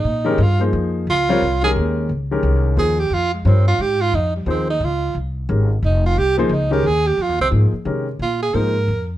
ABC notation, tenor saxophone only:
X:1
M:3/4
L:1/8
Q:"Swing" 1/4=177
K:Fm
V:1 name="Tenor saxophone"
E2 F z3 | F3 A z2 | z4 A G | F A, C F G F |
E G, C E F2 | z4 E F | G C E G A G | F C z4 |
F A B3 z |]